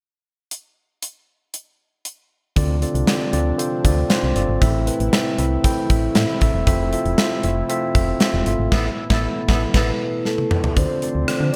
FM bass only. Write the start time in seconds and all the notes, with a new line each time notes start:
2.56 D2
2.95 C2
3.33 D2
3.85 D2
4.23 C2
4.36 G1
4.49 G#1
4.62 A1
5.00 A1
5.38 C2
5.90 A1
6.16 A2
6.41 A1
6.54 E1
6.67 F1
7.05 E1
7.44 F1
7.95 F1
8.34 E1
8.46 G1
8.59 G#1
8.72 A1
9.10 A1
9.49 A1
9.74 A1
10.76 D2
11.15 D2
11.28 D3
11.40 D3